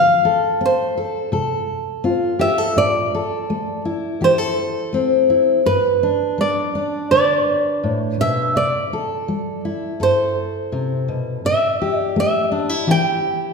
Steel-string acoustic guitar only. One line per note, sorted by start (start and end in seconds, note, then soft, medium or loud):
0.00 0.53 F3 medium
0.25 0.97 A4 medium
0.61 1.26 C4 medium
0.97 1.32 A4 medium
1.32 1.97 C3 medium
1.32 2.39 A4 medium
2.04 2.69 C4 medium
2.04 2.72 F4 soft
2.39 2.58 G4 medium
2.58 2.76 A4 soft
2.76 3.41 A2 medium
3.15 4.21 A4 medium
3.50 4.14 A3 medium
3.85 5.29 E4 soft
4.21 4.85 E3 soft
4.21 4.38 G4 medium
4.38 5.64 A4 soft
4.93 5.57 A3 soft
4.93 5.61 C4 soft
5.30 5.61 E4 soft
5.66 6.30 G2 medium
6.03 6.74 D4 soft
6.38 7.02 G3 soft
6.75 8.56 D4 soft
7.12 7.76 D3 soft
7.12 8.52 B4 soft
7.83 8.19 A2 soft
8.20 8.56 B2 soft
8.56 9.20 C3 medium
8.93 10.00 A4 medium
9.28 9.93 G3 soft
9.65 11.40 E4 soft
10.00 10.64 G2 soft
10.00 11.81 A4 medium
10.72 11.08 C3 medium
11.08 11.44 B2 soft
11.45 12.09 A2 medium
11.82 12.87 G4 medium
12.16 12.80 A3 medium
12.52 12.69 D4 soft
12.69 13.53 E4 soft
12.87 13.51 E3 medium
12.87 13.53 G4 medium